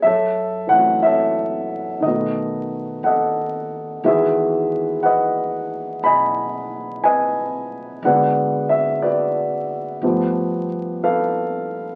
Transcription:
0.02 2.00 F#2 medium
0.02 0.72 E5 medium
0.07 1.05 A4 medium
0.07 1.05 C#5 medium
0.67 2.02 E3 soft
0.67 2.02 A3 soft
0.67 1.00 F#5 medium
0.74 2.05 C#4 soft
0.74 2.04 F#4 soft
1.02 2.01 A4 medium
1.02 2.01 C#5 soft
1.02 2.06 E5 medium
2.00 3.00 B1 medium
2.00 4.02 D#3 soft
2.00 4.04 A3 soft
2.00 2.99 D#5 medium
2.06 4.06 B3 soft
2.06 2.10 F#4 soft
2.06 3.05 A4 soft
2.11 4.04 F#4 soft
3.03 3.99 D#2 medium
3.03 4.01 A4 soft
3.03 4.01 D#5 soft
3.03 4.07 F#5 medium
4.04 5.99 E2 medium
4.04 8.04 D#3 soft
4.04 8.03 E3 soft
4.04 8.03 G#3 soft
4.04 8.04 F#4 medium
4.04 5.04 B4 soft
4.04 5.08 E5 medium
4.08 6.01 G#4 medium
5.03 7.00 B4 soft
5.03 6.04 D#5 medium
5.03 5.99 F#5 medium
6.03 7.99 B1 medium
6.03 7.04 D#5 soft
6.03 7.02 G#5 soft
6.03 7.06 B5 medium
7.04 8.00 B4 soft
7.04 8.00 D#5 medium
7.04 8.06 G#5 medium
8.02 9.98 G#1 medium
8.02 10.03 D3 soft
8.02 10.03 G#3 soft
8.02 10.02 B3 soft
8.02 9.02 F#4 soft
8.02 9.01 D5 soft
8.02 8.67 F#5 medium
8.07 9.02 B4 soft
8.69 9.03 E5 medium
9.02 9.99 F#4 soft
9.02 10.65 B4 soft
9.02 10.65 D5 medium
10.02 11.95 G1 medium
10.02 11.95 F3 soft
10.02 11.95 A3 soft
10.02 11.95 B3 soft
10.02 11.95 G4 soft
11.04 11.95 A4 soft
11.04 11.95 B4 soft
11.04 11.95 F5 medium

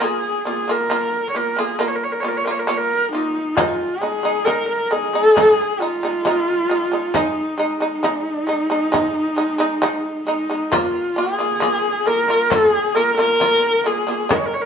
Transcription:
0.00 0.37 A#3 medium
0.00 0.37 F4 medium
0.00 0.47 G#4 medium
0.45 0.64 A#3 medium
0.45 0.64 F4 medium
0.45 0.72 G#4 medium
0.68 0.86 A#3 medium
0.68 0.87 F4 medium
0.68 1.29 A#4 medium
0.90 1.26 A#3 medium
0.90 1.27 F4 medium
1.30 1.39 C#5 medium
1.35 1.53 A#3 medium
1.35 1.53 F4 medium
1.35 1.61 A#4 medium
1.57 1.75 A#3 medium
1.57 1.76 F4 medium
1.57 1.81 G#4 medium
1.79 2.15 A#3 medium
1.79 2.16 F4 medium
1.79 1.89 A#4 medium
1.88 1.96 C#5 medium
1.95 2.05 A#4 medium
2.04 2.14 C#5 medium
2.12 2.22 A#4 medium
2.20 2.41 A#3 medium
2.20 2.30 C#5 medium
2.24 2.42 F4 medium
2.24 2.39 A#4 medium
2.37 2.46 C#5 medium
2.44 2.64 A#3 medium
2.44 2.65 F4 medium
2.44 2.53 A#4 medium
2.51 2.60 C#5 medium
2.59 2.69 A#4 medium
2.67 3.03 A#3 medium
2.67 3.04 F4 medium
2.67 2.79 C#5 medium
2.77 3.12 A#4 medium
3.12 3.49 A#3 medium
3.12 3.57 D#4 medium
3.12 3.49 F4 medium
3.56 3.93 G#3 loud
3.56 3.94 D#4 loud
3.56 4.02 F4 medium
3.56 frame drum medium
4.01 4.20 G#3 medium
4.01 4.20 D#4 medium
4.01 4.46 G#4 medium
4.01 frame drum soft
4.23 4.42 G#3 medium
4.23 4.43 D#4 medium
4.45 4.82 G#3 medium
4.45 4.83 D#4 medium
4.45 4.68 A#4 medium
4.45 frame drum medium
4.69 4.93 A#4 medium
4.91 5.09 G#3 medium
4.91 5.10 D#4 medium
4.91 5.82 G#4 loud
4.91 frame drum soft
5.13 5.31 G#3 medium
5.13 5.32 D#4 medium
5.36 5.71 G#3 medium
5.36 5.72 D#4 medium
5.36 frame drum medium
5.80 5.98 G#3 medium
5.80 5.99 D#4 medium
5.80 7.17 F4 loud
6.03 6.21 G#3 medium
6.03 6.22 D#4 medium
6.03 frame drum soft
6.25 6.61 G#3 medium
6.25 6.62 D#4 medium
6.25 frame drum medium
6.69 6.87 G#3 medium
6.69 6.88 D#4 medium
6.92 7.10 G#3 medium
6.92 7.11 D#4 medium
7.14 7.50 G#3 medium
7.14 7.51 D#4 loud
7.14 7.60 D#4 medium
7.14 frame drum medium
7.58 7.76 G#3 medium
7.58 7.77 D#4 medium
7.58 10.24 D#4 medium
7.58 frame drum soft
7.80 7.99 G#3 medium
7.80 7.99 D#4 medium
8.03 8.39 G#3 medium
8.03 8.40 D#4 medium
8.03 frame drum soft
8.47 8.66 G#3 medium
8.47 8.66 D#4 medium
8.47 frame drum soft
8.70 8.88 G#3 medium
8.70 8.89 D#4 medium
8.92 9.28 G#3 loud
8.92 9.29 D#4 loud
8.92 frame drum medium
9.36 9.55 G#3 medium
9.36 9.56 D#4 medium
9.58 9.77 G#3 medium
9.58 9.78 D#4 loud
9.58 frame drum soft
9.82 10.18 G#3 loud
9.82 10.19 D#4 loud
9.82 frame drum soft
10.27 10.45 G#3 medium
10.27 10.46 D#4 medium
10.27 10.74 D#4 medium
10.50 10.68 G#3 medium
10.50 10.68 D#4 medium
10.72 11.08 A#3 loud
10.72 11.20 F4 medium
10.72 11.08 F4 loud
10.72 frame drum medium
11.16 11.34 A#3 medium
11.16 11.35 F4 medium
11.16 12.08 G#4 medium
11.16 frame drum soft
11.39 11.57 A#3 medium
11.39 11.58 F4 medium
11.60 11.97 A#3 loud
11.60 11.98 F4 loud
11.60 frame drum soft
12.06 12.24 A#3 medium
12.06 12.25 F4 medium
12.06 12.52 A#4 medium
12.06 frame drum soft
12.28 12.46 A#3 medium
12.28 12.47 F4 medium
12.50 12.86 A#3 loud
12.50 12.87 F4 loud
12.50 12.97 G#4 loud
12.50 frame drum medium
12.95 13.13 A#3 medium
12.95 13.14 F4 medium
12.95 13.17 A#4 medium
13.18 13.36 A#3 medium
13.18 13.36 F4 medium
13.18 13.88 A#4 loud
13.18 frame drum soft
13.40 13.76 A#3 medium
13.40 13.77 F4 medium
13.40 frame drum medium
13.84 14.03 A#3 medium
13.84 14.03 F4 medium
13.84 14.32 G#4 medium
14.07 14.25 A#3 medium
14.07 14.26 F4 medium
14.29 14.65 C#3 loud
14.29 14.65 G#3 loud
14.29 14.39 A#4 medium
14.29 frame drum medium
14.37 14.47 C#5 medium
14.46 14.55 A#4 medium
14.54 14.63 C#5 medium
14.61 14.65 A#4 medium

